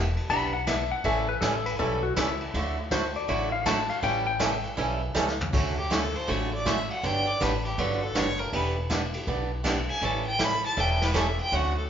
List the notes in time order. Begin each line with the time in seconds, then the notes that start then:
Already playing: E1
0.17 ride
0.30 B1 E3 B3 D4 G4 B5, kick, ride
0.53 F#5
0.67 E3 B3 D4 G4 E5, kick, snare, hi-hat pedal, ride
0.91 F#5
1.04 A1 E3 G3 C#4 E4 A4 E5, kick, ride
1.29 B4
1.41 A1 E3 G3 C#4 E4 A4, kick, snare, hi-hat pedal, ride
1.66 B4, ride
1.79 B1 E3 G3 C#4 E4 A4, kick
2.03 F#4
2.16 C#2 E3 G3 C#4 E4 A4, kick, snare, hi-hat pedal, ride
2.41 ride
2.54 D2 D3 F#3 A3 E4 F#4, kick, ride
2.91 D3 F#3 A3 E4 F#4 C5, kick, snare, hi-hat pedal, ride
3.15 D5, ride
3.28 A1 D3 F#3 A3 E4 F#4, kick, ride
3.52 F5
3.66 D3 F#3 A3 E4 F#4 A5, kick, snare, hi-hat pedal, ride
3.89 F5, ride
4.02 A1 E3 G3 C#4 E4 A4 G5, kick, ride
4.27 G5
4.39 E3 G3 C#4 E4 A4, kick, snare, hi-hat pedal, ride
4.64 ride
4.77 B1 E3 G3 C#4 E4 A4, kick, ride
5.14 C#2 E3 G3 C#4 E4 A4, snare, hi-hat pedal
5.28 snare
5.41 floor tom
5.53 D2 D3 F#3 A3 C#4 F#4, kick, crash
5.78 G4
5.90 D3 F#3 A3 C#4 F#4 A4, kick, snare, hi-hat pedal, ride
6.15 C5, ride
6.27 A1 D3 F#3 A3 C#4 F#4 C#5, kick, ride
6.53 D5
6.65 D3 F#3 A3 C#4 F#4 E5, kick, snare, hi-hat pedal, ride
6.91 F#5, ride
7.03 G1 D3 F#3 B3 D4 G4 G5, kick, ride
7.27 D5
7.40 A1 D3 F#3 B3 D4 G4 B4, kick, snare, hi-hat pedal, ride
7.65 G4, ride
7.78 G1 D3 F#3 B3 D4 F#4 G4, kick, ride
8.03 A4
8.15 F#1 D3 F#3 B3 D4 G4 C#5, kick, snare, hi-hat pedal, ride
8.39 A#4, ride
8.53 E1 E3 B3 D4 G4 B4, kick, ride
8.90 E3 B3 D4 G4, kick, snare, hi-hat pedal, ride
9.14 ride
9.27 B1 E3 B3 D4 G4, kick
9.64 E3 B3 D4 G4, kick, snare, hi-hat pedal, ride
9.89 G#5, ride
10.01 A1 E3 G3 C#4 E4 A4 A5, kick, ride
10.27 G5
10.39 E3 G3 C#4 E4 A4, kick, snare, hi-hat pedal, ride
10.43 B5
10.64 A5, ride
10.76 E1 E3 G3 C#4 E4 A4 G5, kick, ride
11.02 B4, snare, ride
11.14 E3 G3 C#4 E4 A4, kick, snare, hi-hat pedal
11.18 E5
11.39 G5, ride
11.52 D2 D3 F#3 A3 C#4 F#4 F#5, kick, ride
11.78 A4